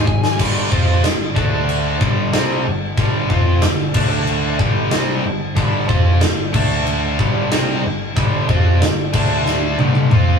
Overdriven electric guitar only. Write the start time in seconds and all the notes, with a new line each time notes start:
0.06 G#2 D#3
0.38 G2 D3 G3
0.71 F3 C4 F4
1.03 G2 D3
1.35 D3 A3 D4
2.00 G2 D3 G3
2.32 C3 G3 C4
2.65 G2 D3
2.98 G2 D3 G3
3.30 F3 C4 F4
3.62 G2 D3
3.94 D3 A3 D4
4.59 G2 D3 G3
4.90 C3 G3 C4
5.24 G2 D3
5.55 G2 D3 G3
5.88 F3 C4 F4
6.21 G2 D3
6.53 D3 A3 D4
7.18 G2 D3 G3
7.51 C3 G3 C4
7.84 G2 D3
8.16 G2 D3 G3
8.49 F3 C4 F4
8.81 G2 D3
9.13 D3 A3 D4
9.78 G2 D3 G3
10.11 F3 C4 F4